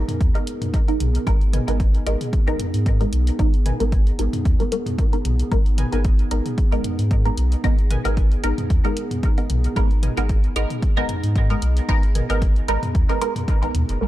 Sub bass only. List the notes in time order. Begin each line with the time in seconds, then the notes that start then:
0.21 D#2
1.00 B1
1.27 G#1
1.68 G#1
2.06 G#1
2.47 G#1
2.74 G#2
3.13 B1
3.39 G#1
3.80 G#1
4.19 G#1
4.45 D#2
5.25 B1
5.52 G#1
5.93 G#1
6.31 G#1
6.72 G#1
6.99 G#2
7.37 B1
7.64 G#1
8.05 G#1
8.44 G#1
8.70 D#2
9.50 B1
9.76 G#1
10.17 G#1
10.56 G#1
10.97 G#1
11.24 G#2
11.62 B1
11.89 G#1
12.30 G#1
12.68 G#1
12.95 D#2
13.62 G#1
13.75 D#2
13.89 F#1
14.01 G#1